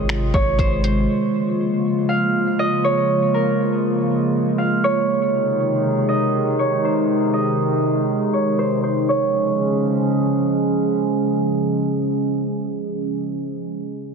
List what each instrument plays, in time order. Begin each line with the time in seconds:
Already playing: 808-style bass G#1, ambient pad C3 D#3 G#3 F4 G#4, harp C5 D#5
0.09 finger snap, closed hi-hat
0.34 808-style bass G#1, harp C#5, kick
0.59 808-style bass G#1, harp C5, kick, closed hi-hat
0.84 harp C5, closed hi-hat
1.09 ambient pad C#3 F3 A#3
2.09 harp F5
2.59 harp D#5
2.84 harp C#5
3.34 harp A#4
4.58 harp F5
4.84 harp C#5
5.09 ambient pad C3 D#3 G#3 D#4 G#4
6.09 harp D#5
6.59 harp C#5
6.85 harp C5
7.34 harp D#5
8.33 harp C#5
8.59 harp C5
8.84 harp C5
9.09 ambient pad C#3 F3 G#3 C#4 G#4, harp C#5